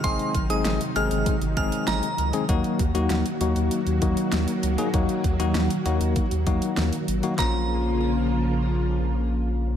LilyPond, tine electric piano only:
\new Staff \with { instrumentName = "Tine electric piano" } { \time 4/4 \key bes \minor \tempo 4 = 98 <aes c' ees' aes'>8 r16 <aes c' ees' aes'>8 r16 <aes c' ees' aes'>8. r16 <aes c' ees' aes'>8. r8 <aes c' ees' aes'>16 | <ges bes ees' ges'>8 r16 <ges bes ees' ges'>8 r16 <ges bes ees' ges'>8. r16 <ges bes ees' ges'>8. r8 <ges bes ees' aes'>16 | <ges bes ees' ges'>8 r16 <ges bes ees' ges'>8 r16 <ges bes ees' ges'>8. r16 <ges bes ees' ges'>8. r8 <ges bes ees' ges'>16 | <f bes des' f'>1 | }